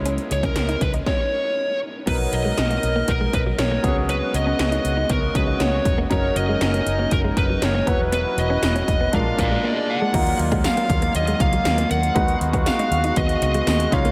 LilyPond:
<<
  \new Staff \with { instrumentName = "Lead electric guitar" } { \time 4/4 \key cis \dorian \tempo 4 = 119 r8 cis''16 ais'8. b'8 cis''4. r8 | b'8 dis''8 dis''4 ais'8 b'8 cis''8. r16 | b'8 dis''8 dis''4 ais'8 b'8 cis''8. r16 | cis''8 dis''8 dis''4 ais'8 b'8 cis''8. r16 |
b'8 dis''8 dis''4 eis''8 <d'' eis''>8 d''8 fis''8~ | \key dis \minor fis''8 r8 eis''4 dis''8 eis''4 fis''8~ | fis''8 r8 eis''4 dis''8 dis''4 eis''8 | }
  \new Staff \with { instrumentName = "Grand piano" } { \time 4/4 \key cis \dorian <gis cis' e' cis''>2 r2 | <fis b dis' ais'>2.~ <fis b dis' ais'>8 <fis b cis' gis'>8~ | <fis b cis' gis'>2~ <fis b cis' gis'>8 <fis b cis' gis'>4. | <fis cis' dis' ais'>2.~ <fis cis' dis' ais'>8 <fis b e' b'>8~ |
<fis b e' b'>2 <gis d' eis' ais'>2 | \key dis \minor <fis ais dis' eis' ais'>1 | <gis b dis' fis' b'>2.~ <gis b dis' fis' b'>8 <gis cis' dis' eis' cis''>8 | }
  \new Staff \with { instrumentName = "Woodwind section" } { \time 4/4 \key cis \dorian << { r1 | <b dis'>2.~ <b dis'>8 <cis b fis'>8~ | <cis b fis'>1 | <fis dis' ais'>2.~ <fis dis' ais'>8 <e fis' b'>8~ |
<e fis' b'>2 <ais d'>2 | \key dis \minor <dis fis eis'>1 | <b fis'>2.~ <b fis'>8 <cis dis' eis'>8 | } \\ { r1 | ais'2.~ ais'8 gis8~ | gis1 | cis'2.~ cis'8 e'8~ |
e'2 gis2 | ais1 | gis1 | } >> }
  \new Staff \with { instrumentName = "Clean electric guitar" } { \time 4/4 \key cis \dorian cis'16 r8 cis'16 r16 dis'16 r16 dis'16 r2 | b16 r8 gis16 r16 ais16 r16 ais16 r16 gis16 r16 fis16 r16 ais16 b16 r16 | cis'16 r8 cis'16 r16 dis'16 r16 dis'16 b16 r8 gis16 ais16 r8 ais16 | fis16 r8 gis16 r16 ais16 r16 ais16 r16 gis16 r16 fis16 r16 ais16 ais16 r16 |
b16 r8 cis'16 r16 cis'16 r16 b16 gis16 r8 gis16 ais16 r8 gis16 | \key dis \minor dis'16 r8 gis16 r16 ais16 r16 ais16 r16 gis16 r16 fis16 r16 ais16 ais16 r16 | gis16 r8 b16 r16 dis'16 r16 dis'16 b16 r8 gis16 ais16 r8 ais16 | }
  \new Staff \with { instrumentName = "Fingered electric bass" } { \clef bass \time 4/4 \key cis \dorian cis,8 cis,8 cis,8 cis,8 r2 | b,,8 b,,8 b,,8 b,,8 b,,8 b,,8 b,,8 cis,8~ | cis,8 cis,8 cis,8 cis,8 cis,8 cis,8 cis,8 e,,8 | fis,,8 fis,,8 fis,,8 fis,,8 fis,,8 fis,,8 fis,,8 e,,8~ |
e,,8 e,,8 e,,8 e,,8 ais,,8 ais,,8 r4 | \key dis \minor dis,8 dis,8. r16 dis,8 dis,8 cis,8 dis,8 dis,8 | dis,8 dis,8. r16 dis,8 dis,8 cis,8 dis,8 cis,8 | }
  \new DrumStaff \with { instrumentName = "Drums" } \drummode { \time 4/4 hh16 hh16 hh16 <hh bd>16 <hh sn>16 hh16 <hh bd>16 hh16 <bd sn>4 r4 | <cymc hh bd>8 hh8 <hh sn>16 hh16 hh8 <hh bd>8 <hh bd>8 <hh sn>8 <hh bd>8 | hh8 hh8 <hh sn>16 hh16 hh8 <hh bd>8 <hh bd>8 <hh sn>8 <hh bd>8 | <hh bd>8 hh8 <hh sn>16 hh16 hh8 <hh bd>8 <hh bd>8 <hh sn>8 <hh bd>8 |
hh8 hh8 <hh sn tamb>16 hh16 <hh bd>8 <hh bd>8 <hh bd>8 r4 | <cymc hh bd>16 hh16 hh16 <hh bd>16 <hh sn tamb>16 hh16 <hh bd>16 hh16 hh16 hh16 <hh bd>16 hh16 <hh sn tamb>16 hh16 hh16 hh16 | <hh bd>16 hh16 hh16 <hh bd>16 <hh sn tamb>16 hh16 hh16 hh16 <hh bd>16 hh16 hh16 hh16 <hh sn tamb>16 hh16 <hh bd>16 hh16 | }
>>